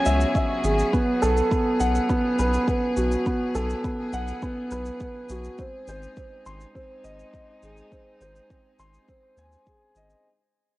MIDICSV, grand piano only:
0, 0, Header, 1, 2, 480
1, 0, Start_track
1, 0, Tempo, 582524
1, 762, Time_signature, 4, 2, 24, 8
1, 8884, End_track
2, 0, Start_track
2, 0, Title_t, "Grand piano"
2, 0, Program_c, 0, 0
2, 0, Control_c, 0, 64, 127
2, 0, Note_on_c, 0, 61, 90
2, 0, Note_on_c, 0, 68, 64
2, 0, Note_on_c, 0, 73, 86
2, 0, Note_on_c, 0, 76, 68
2, 0, Note_on_c, 0, 85, 88
2, 48, Note_off_c, 0, 76, 0
2, 48, Note_on_c, 0, 76, 84
2, 273, Note_off_c, 0, 76, 0
2, 292, Note_on_c, 0, 76, 70
2, 424, Note_off_c, 0, 76, 0
2, 527, Note_off_c, 0, 68, 0
2, 527, Note_on_c, 0, 68, 66
2, 753, Note_off_c, 0, 68, 0
2, 766, Note_on_c, 0, 59, 72
2, 771, Control_c, 0, 64, 0
2, 774, Note_off_c, 0, 85, 0
2, 775, Note_off_c, 0, 61, 0
2, 778, Note_off_c, 0, 73, 0
2, 902, Control_c, 0, 64, 127
2, 992, Note_off_c, 0, 59, 0
2, 1005, Note_on_c, 0, 69, 88
2, 1140, Note_off_c, 0, 69, 0
2, 1245, Note_on_c, 0, 59, 64
2, 1471, Note_off_c, 0, 59, 0
2, 1485, Note_on_c, 0, 78, 89
2, 1711, Note_off_c, 0, 78, 0
2, 1726, Note_on_c, 0, 59, 80
2, 1952, Note_off_c, 0, 59, 0
2, 1970, Note_on_c, 0, 71, 79
2, 2193, Note_off_c, 0, 71, 0
2, 2205, Note_on_c, 0, 71, 69
2, 2340, Note_off_c, 0, 71, 0
2, 2444, Note_on_c, 0, 66, 61
2, 2671, Note_off_c, 0, 66, 0
2, 2689, Note_on_c, 0, 59, 69
2, 2914, Note_off_c, 0, 59, 0
2, 2926, Note_on_c, 0, 69, 84
2, 3061, Note_off_c, 0, 69, 0
2, 3167, Note_on_c, 0, 59, 61
2, 3392, Note_off_c, 0, 59, 0
2, 3407, Note_on_c, 0, 78, 88
2, 3632, Note_off_c, 0, 78, 0
2, 3648, Note_on_c, 0, 59, 84
2, 3873, Note_off_c, 0, 59, 0
2, 3888, Note_on_c, 0, 71, 85
2, 4113, Note_off_c, 0, 71, 0
2, 4126, Note_on_c, 0, 71, 63
2, 4261, Note_off_c, 0, 71, 0
2, 4371, Note_on_c, 0, 66, 65
2, 4595, Note_off_c, 0, 66, 0
2, 4608, Note_on_c, 0, 60, 76
2, 4612, Control_c, 0, 64, 0
2, 4744, Control_c, 0, 64, 127
2, 4833, Note_off_c, 0, 60, 0
2, 4851, Note_on_c, 0, 72, 85
2, 4983, Note_off_c, 0, 72, 0
2, 5086, Note_on_c, 0, 60, 64
2, 5312, Note_off_c, 0, 60, 0
2, 5325, Note_on_c, 0, 84, 86
2, 5551, Note_off_c, 0, 84, 0
2, 5561, Note_on_c, 0, 60, 81
2, 5790, Note_off_c, 0, 60, 0
2, 5800, Note_on_c, 0, 75, 81
2, 6029, Note_off_c, 0, 75, 0
2, 6043, Note_on_c, 0, 75, 64
2, 6180, Note_off_c, 0, 75, 0
2, 6287, Note_on_c, 0, 68, 65
2, 6513, Note_off_c, 0, 68, 0
2, 6529, Note_on_c, 0, 60, 67
2, 6754, Note_off_c, 0, 60, 0
2, 6770, Note_on_c, 0, 72, 79
2, 6903, Note_off_c, 0, 72, 0
2, 7006, Note_on_c, 0, 60, 64
2, 7232, Note_off_c, 0, 60, 0
2, 7246, Note_on_c, 0, 84, 86
2, 7472, Note_off_c, 0, 84, 0
2, 7488, Note_on_c, 0, 60, 81
2, 7713, Note_off_c, 0, 60, 0
2, 7732, Note_on_c, 0, 80, 80
2, 7955, Note_off_c, 0, 80, 0
2, 7974, Note_on_c, 0, 68, 60
2, 8196, Note_off_c, 0, 68, 0
2, 8214, Note_on_c, 0, 75, 81
2, 8345, Note_off_c, 0, 75, 0
2, 8451, Control_c, 0, 64, 0
2, 8884, End_track
0, 0, End_of_file